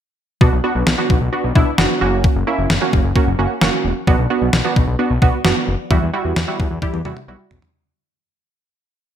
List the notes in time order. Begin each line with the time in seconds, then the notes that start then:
0.41 B1 B3 D4 F#4, kick
0.52 B1
0.64 B3 D4 F#4
0.75 B1
0.87 B1, snare
0.98 B3 D4 F#4
1.10 B1, kick
1.21 B1
1.33 B3 D4 F#4
1.44 B1
1.55 B1 B3 D4 E4, kick
1.78 F#1 B3 D4 F#4, snare
2.01 F#1 A#3 C#4 F#4
2.24 kick
2.36 F#1
2.47 A#3 C#4 E4
2.59 F#1
2.70 F#1, snare
2.81 A#3 C#4 F#4
2.93 F#1, kick
3.04 F#1
3.16 A#3 C#4 F#4, kick
3.27 F#1
3.39 F#1 A#3 C#4 F#4
3.61 F#1 A#3 C#4 F#4, snare
3.85 E1
4.07 B1 B3 D4 F#4, kick
4.19 B1
4.30 B3 D4 F#4
4.42 B1
4.53 B1, snare
4.65 B3 D4 F#4
4.76 B1, kick
4.88 B1
4.99 B3 D4 F#4
5.10 B1
5.22 B1 B3 D4 F#4, kick
5.45 F#1 B3 D4 F#4, snare
5.68 F#1
5.91 E2 G3 E4 F#4, kick
6.02 E2
6.13 G3 E4 F#4
6.25 E2
6.36 E2, snare
6.48 G3 E4 F#4
6.60 E2, kick
6.71 E2
6.82 G3 E4 G4, kick, high tom
6.94 E2, high tom
7.05 E2 G3 E4 F#4, mid tom
7.17 mid tom
7.28 B1 G3 E4 F#4
7.51 B1, floor tom
7.62 floor tom